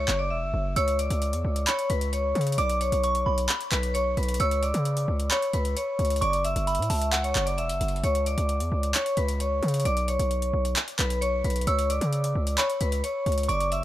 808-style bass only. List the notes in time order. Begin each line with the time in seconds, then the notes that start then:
0.08 F#1
0.31 E1
0.42 F#1
0.54 F#1
0.76 C#2
1.10 C#2
1.33 E2
1.45 C#2
1.90 C#2
2.35 C#3
2.58 B1
2.92 B1
3.26 B1
3.72 B1
4.17 B1
4.40 C#2
4.74 C#3
5.08 C#2
5.54 C#2
5.99 C#2
6.22 F#1
6.56 F#1
6.79 A2
6.90 C#2
7.35 F#1
7.58 E1
7.69 F#1
7.81 F#1
8.04 C#2
8.38 C#2
8.60 E2
8.72 C#2
9.17 C#2
9.63 C#3
9.85 B1
10.19 B1
10.53 B1
10.99 B1
11.44 B1
11.67 C#2
12.01 C#3
12.35 C#2
12.81 C#2
13.26 C#2
13.49 F#1